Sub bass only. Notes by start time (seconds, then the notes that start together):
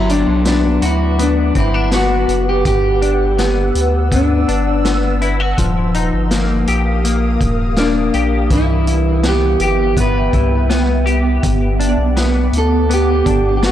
Already playing: G1
0.27 B1
0.82 D2
1.55 G1
2.28 F#1
2.65 G1
3.75 D2
4.48 G1
5.58 D#1
6.13 G1
6.68 A#1
7.40 D#1
8.14 A#1
8.50 C2
9.60 G1
10.33 C2
11.43 G1
11.98 B1
12.53 D2
13.26 G1